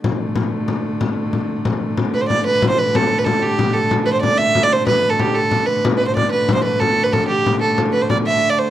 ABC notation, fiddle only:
X:1
M:6/8
L:1/16
Q:3/8=124
K:Am
V:1 name="Fiddle"
z12 | z12 | z2 B c d2 B3 c B2 | A3 B A2 G4 A2 |
z2 B c d2 e3 d c2 | B3 A G2 A4 B2 | z2 B c d2 B3 c B2 | A3 B A2 G4 A2 |
z2 B c d2 e3 d c2 |]